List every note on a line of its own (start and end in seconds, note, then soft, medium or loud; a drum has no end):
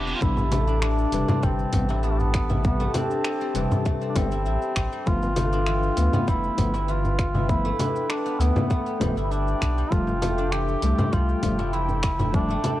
0.00 0.14 E1 loud
0.00 0.27 E3 medium
0.00 0.52 A3 medium
0.00 1.34 B3 medium
0.00 0.12 D4 medium
0.00 0.67 D4 medium
0.00 1.88 E4 medium
0.00 0.23 G4 medium
0.00 0.18 D5 medium
0.00 0.18 E5 medium
0.00 0.18 G5 medium
0.00 reverse cymbal medium
0.07 0.27 G3 medium
0.07 shaker soft
0.15 0.23 F4 medium
0.21 1.06 A1 loud
0.21 0.41 C3 medium
0.21 0.42 G3 medium
0.21 0.42 B3 medium
0.21 12.80 D4 medium
0.21 0.85 E4 loud
0.21 5.03 G4 medium
0.21 5.03 A4 medium
0.21 5.03 A5 medium
0.21 kick loud
0.21 shaker soft
0.37 djembe tone medium
0.37 shaker soft
0.52 2.79 A3 medium
0.52 open hi-hat medium
0.52 djembe tone medium
0.52 low conga medium
0.52 shaker medium
0.68 2.94 D4 medium
0.68 shaker soft
0.82 2.02 E3 medium
0.82 1.46 D4 loud
0.82 finger snap medium
0.82 shaker soft
0.98 shaker soft
1.12 1.24 E1 medium
1.12 1.70 C3 medium
1.12 1.70 G3 medium
1.12 1.71 B4 medium
1.12 open hi-hat medium
1.12 djembe slap medium
1.12 shaker medium
1.28 3.41 C4 medium
1.28 djembe slap medium
1.28 low conga medium
1.28 djembe bass medium
1.28 shaker soft
1.43 1.65 G1 loud
1.43 4.14 G3 medium
1.43 2.05 C4 loud
1.43 kick loud
1.43 shaker soft
1.59 shaker soft
1.73 2.88 A1 medium
1.73 1.86 C3 loud
1.73 1.87 G3 medium
1.73 1.87 B3 loud
1.73 kick medium
1.73 open hi-hat medium
1.73 djembe bass medium
1.73 shaker medium
1.89 2.49 E4 medium
1.89 djembe slap medium
1.89 shaker soft
2.03 3.54 E3 medium
2.03 2.12 B3 medium
2.03 shaker soft
2.11 2.21 A3 medium
2.19 2.65 B3 medium
2.19 djembe tone medium
2.19 shaker soft
2.34 finger snap medium
2.34 kick loud
2.34 open hi-hat medium
2.34 shaker medium
2.49 4.31 E4 medium
2.49 djembe tone medium
2.49 low conga medium
2.49 djembe bass medium
2.49 shaker soft
2.63 2.84 C3 medium
2.63 2.84 G3 medium
2.63 2.97 B3 loud
2.63 2.85 B3 medium
2.63 kick loud
2.63 shaker soft
2.80 3.85 A3 medium
2.80 djembe tone medium
2.80 shaker soft
2.94 3.90 C4 loud
2.94 5.52 D4 medium
2.94 open hi-hat medium
2.94 djembe tone medium
2.94 low conga medium
2.94 shaker medium
3.10 shaker soft
3.24 finger snap medium
3.24 shaker soft
3.41 4.01 C4 medium
3.41 shaker soft
3.54 3.66 E1 medium
3.54 4.12 C3 medium
3.54 5.12 E3 medium
3.54 4.13 G3 medium
3.54 4.13 B4 medium
3.54 open hi-hat medium
3.54 djembe slap medium
3.54 shaker medium
3.71 djembe slap medium
3.71 djembe bass medium
3.71 shaker soft
3.85 5.36 A3 medium
3.85 kick loud
3.85 shaker soft
4.01 4.76 C4 medium
4.01 shaker soft
4.09 4.18 D4 medium
4.14 4.47 G1 medium
4.14 4.28 C3 medium
4.14 4.91 G3 loud
4.14 4.29 G3 medium
4.14 4.29 B3 loud
4.14 5.09 C4 loud
4.14 kick loud
4.14 open hi-hat medium
4.14 low conga medium
4.14 djembe bass loud
4.14 shaker medium
4.31 4.46 E4 medium
4.31 shaker soft
4.46 4.57 A1 loud
4.46 6.74 E4 medium
4.46 shaker soft
4.62 shaker soft
4.76 4.88 A1 loud
4.76 6.19 C4 medium
4.76 finger snap medium
4.76 kick medium
4.76 open hi-hat medium
4.76 djembe tone soft
4.76 shaker medium
4.92 5.12 G3 medium
4.92 shaker soft
5.06 5.91 G1 loud
5.06 5.26 F3 medium
5.06 5.27 A3 medium
5.06 5.28 B3 medium
5.06 6.28 F4 loud
5.06 9.88 B4 medium
5.06 12.80 G5 loud
5.06 kick loud
5.06 shaker soft
5.22 djembe tone medium
5.22 shaker soft
5.36 7.64 A3 medium
5.36 open hi-hat medium
5.36 djembe tone medium
5.36 low conga medium
5.36 shaker medium
5.53 7.79 D4 medium
5.53 shaker soft
5.66 6.87 E3 medium
5.66 finger snap medium
5.66 shaker soft
5.83 shaker soft
5.97 6.09 D2 medium
5.97 6.55 A3 medium
5.97 6.55 B3 medium
5.97 open hi-hat medium
5.97 djembe slap soft
5.97 shaker medium
6.13 8.25 B3 medium
6.13 djembe slap medium
6.13 low conga medium
6.13 djembe bass loud
6.13 shaker soft
6.28 6.50 F1 medium
6.28 9.00 G3 medium
6.28 6.92 E4 loud
6.28 kick loud
6.28 shaker medium
6.44 shaker soft
6.57 7.73 G1 loud
6.57 6.71 F3 medium
6.57 6.71 A3 medium
6.57 6.72 B3 loud
6.57 kick medium
6.57 open hi-hat medium
6.57 djembe bass medium
6.57 shaker medium
6.74 7.34 E4 medium
6.74 djembe slap medium
6.74 shaker soft
6.88 8.39 E3 medium
6.88 7.50 F4 loud
6.88 shaker soft
7.05 djembe tone medium
7.05 shaker soft
7.19 finger snap medium
7.19 kick loud
7.19 open hi-hat medium
7.19 shaker medium
7.34 9.17 E4 medium
7.34 djembe tone medium
7.34 djembe bass medium
7.34 low conga medium
7.34 shaker soft
7.48 7.69 F3 medium
7.48 7.69 A3 medium
7.48 7.70 B3 medium
7.48 8.12 E4 loud
7.48 kick loud
7.48 shaker soft
7.65 8.70 A3 loud
7.65 djembe tone medium
7.65 shaker soft
7.79 10.38 D4 medium
7.79 open hi-hat medium
7.79 djembe tone medium
7.79 low conga medium
7.79 shaker medium
7.96 shaker soft
8.10 8.41 D4 loud
8.10 finger snap medium
8.10 shaker soft
8.26 8.86 B3 medium
8.26 shaker soft
8.39 8.51 D2 medium
8.39 9.97 E3 medium
8.39 8.97 A3 medium
8.39 9.04 B3 loud
8.39 8.98 B3 medium
8.39 open hi-hat medium
8.39 djembe slap soft
8.39 shaker medium
8.56 djembe slap soft
8.56 djembe bass loud
8.56 low conga medium
8.56 shaker soft
8.70 10.21 A3 medium
8.70 kick loud
8.70 shaker soft
8.86 9.62 B3 medium
8.86 shaker soft
9.00 9.12 D1 medium
9.00 9.13 F3 medium
9.00 9.77 G3 loud
9.00 9.14 A3 medium
9.00 9.14 B3 loud
9.00 kick loud
9.00 open hi-hat medium
9.00 low conga medium
9.00 djembe bass loud
9.00 shaker medium
9.16 9.54 G1 medium
9.16 9.31 E4 medium
9.16 shaker soft
9.23 9.33 E4 medium
9.31 9.93 D4 loud
9.31 11.59 E4 medium
9.31 shaker soft
9.48 shaker soft
9.60 9.83 B1 loud
9.60 11.05 B3 medium
9.60 finger snap medium
9.60 kick medium
9.60 open hi-hat medium
9.60 djembe tone soft
9.60 shaker medium
9.78 9.97 G3 medium
9.78 shaker soft
9.90 10.76 F1 loud
9.90 10.11 F3 medium
9.90 10.12 G3 medium
9.90 10.12 A3 medium
9.90 10.54 F4 loud
9.90 12.80 A4 medium
9.90 kick loud
9.90 shaker soft
10.07 djembe tone medium
10.07 shaker soft
10.22 12.50 A3 medium
10.22 open hi-hat medium
10.22 djembe tone medium
10.22 low conga medium
10.22 shaker medium
10.38 12.64 D4 medium
10.38 shaker soft
10.52 11.72 E3 medium
10.52 11.15 G4 loud
10.52 finger snap medium
10.52 shaker soft
10.68 shaker soft
10.82 10.94 C2 medium
10.82 11.40 G3 medium
10.82 11.40 A3 medium
10.82 open hi-hat medium
10.82 djembe slap medium
10.82 shaker medium
10.99 12.80 C4 medium
10.99 djembe slap soft
10.99 low conga medium
10.99 djembe bass medium
10.99 shaker soft
11.13 11.35 C2 medium
11.13 12.80 G3 medium
11.13 11.75 F4 loud
11.13 kick loud
11.13 shaker soft
11.29 shaker soft
11.42 12.58 F1 loud
11.42 11.56 F3 medium
11.42 11.56 G3 medium
11.42 11.57 A3 loud
11.42 kick medium
11.42 open hi-hat medium
11.42 djembe bass medium
11.42 shaker medium
11.59 12.19 E4 medium
11.59 djembe slap medium
11.59 shaker soft
11.73 12.80 E3 medium
11.73 12.34 E4 loud
11.73 shaker soft
11.89 djembe tone medium
11.89 shaker soft
12.03 finger snap medium
12.03 kick loud
12.03 open hi-hat medium
12.03 shaker medium
12.19 12.80 E4 medium
12.19 djembe tone medium
12.19 low conga medium
12.19 djembe bass medium
12.19 shaker soft
12.33 12.54 F3 medium
12.33 12.54 G3 medium
12.33 12.55 A3 medium
12.33 12.80 D4 loud
12.33 kick loud
12.33 shaker soft
12.49 12.80 A3 loud
12.49 djembe tone medium
12.49 shaker soft
12.64 12.80 D4 medium
12.64 open hi-hat medium
12.64 djembe tone medium
12.64 low conga medium
12.64 shaker medium